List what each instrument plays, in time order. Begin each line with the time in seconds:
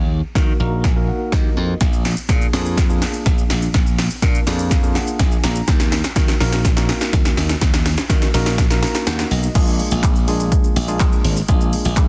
Already playing: slap bass D#2
0.35 slap bass D#3, tine electric piano A#3 D#4 F#4 A#4, kick, snare
0.60 slap bass A#1, tine electric piano A#3 D#4 F#4 A#4 A#5
0.84 kick, snare
0.96 tine electric piano A#3 D#4 F#4 A#4
1.08 tine electric piano F#5
1.32 slap bass D#2, tine electric piano D#5, kick, snare
1.57 slap bass F2
1.81 slap bass A#1, kick, snare, closed hi-hat, shaker
1.93 shaker
2.05 snare, open hi-hat, shaker
2.17 shaker
2.29 slap bass A#2, tine electric piano A#3 D4 F4 G#4, kick, snare, closed hi-hat, shaker
2.41 shaker
2.53 slap bass F2, tine electric piano A#3 D4 F4 G#4, snare, open hi-hat, shaker
2.66 shaker
2.78 kick, snare, closed hi-hat, shaker
2.89 tine electric piano A#3 D4 F4 G#4, shaker
3.02 snare, open hi-hat, shaker
3.14 shaker
3.26 slap bass A#1, kick, snare, closed hi-hat, shaker
3.38 shaker
3.50 slap bass A#1, snare, open hi-hat, shaker
3.62 shaker
3.74 slap bass A#1, kick, snare, closed hi-hat, shaker
3.86 shaker
3.99 snare, open hi-hat, shaker
4.10 shaker
4.22 slap bass A#2, tine electric piano A#3 D4 F4 A#4, kick, snare, closed hi-hat, shaker
4.35 shaker
4.47 slap bass F2, tine electric piano A#3 D4 F4 G#4 D5, snare, open hi-hat, shaker
4.59 shaker
4.71 tine electric piano F5, kick, snare, closed hi-hat, shaker
4.83 tine electric piano A#3 D4 F4 G#4, shaker
4.95 tine electric piano F#5, snare, open hi-hat, shaker
5.07 shaker
5.19 slap bass A#1, tine electric piano G#5, kick, snare, closed hi-hat, shaker
5.31 shaker
5.44 slap bass A#1, tine electric piano A#5, snare, open hi-hat, shaker
5.56 shaker
5.68 slap bass D#2, kick, snare, closed hi-hat, shaker
5.80 snare, shaker
5.92 snare, open hi-hat, shaker
6.04 snare, shaker
6.16 slap bass D#3, tine electric piano A#3 D#4 F#4 A#4, kick, snare, closed hi-hat, shaker
6.28 snare, shaker
6.40 slap bass A#1, tine electric piano A#3 D#4 F#4 A#4, snare, open hi-hat, shaker
6.53 snare, shaker
6.65 kick, snare, closed hi-hat, shaker
6.76 tine electric piano A#3 D#4 F#4 A#4, snare, shaker
6.89 snare, open hi-hat, shaker
7.01 snare, shaker
7.13 slap bass D#2, kick, snare, closed hi-hat, shaker
7.25 snare, shaker
7.37 slap bass D#2, snare, open hi-hat, shaker
7.49 snare, shaker
7.61 slap bass D#2, kick, snare, closed hi-hat, shaker
7.74 snare, shaker
7.86 snare, open hi-hat, shaker
7.98 snare, shaker
8.10 slap bass D#3, tine electric piano A#3 D#4 F#4 A#4, kick, snare, closed hi-hat, shaker
8.22 snare, shaker
8.34 slap bass A#1, tine electric piano A#3 D#4 F#4 A#4, snare, open hi-hat, shaker
8.46 snare, shaker
8.58 kick, snare, closed hi-hat, shaker
8.70 tine electric piano A#3 D#4 F#4 A#4, snare, shaker
8.82 tine electric piano A#5, snare, open hi-hat, shaker
8.95 snare, shaker
9.07 slap bass D#2, tine electric piano F#5, snare, closed hi-hat, shaker
9.19 snare, shaker
9.31 slap bass B1, tine electric piano D#5, open hi-hat, shaker
9.43 shaker
9.55 slap bass A#1, tine electric piano G#3 A#3 D4 F4 G#4, kick, closed hi-hat, crash, shaker
9.67 shaker
9.79 open hi-hat, shaker
9.91 slap bass A#1, shaker
10.03 kick, clap, closed hi-hat, shaker
10.16 shaker
10.27 tine electric piano G#3 A#3 D4 F4 G#4, open hi-hat, shaker
10.40 shaker
10.52 kick, closed hi-hat, shaker
10.64 shaker
10.76 slap bass A#1, open hi-hat, shaker
10.88 tine electric piano G#3 A#3 D4 F4 G#4, shaker
11.00 kick, clap, closed hi-hat, shaker
11.12 shaker
11.24 slap bass G#1, open hi-hat, shaker
11.37 shaker
11.48 slap bass A#1, tine electric piano G#3 A#3 D4 F4 G#4, kick, closed hi-hat, shaker
11.61 shaker
11.73 open hi-hat, shaker
11.85 slap bass A#1, shaker
11.97 kick, clap, closed hi-hat, shaker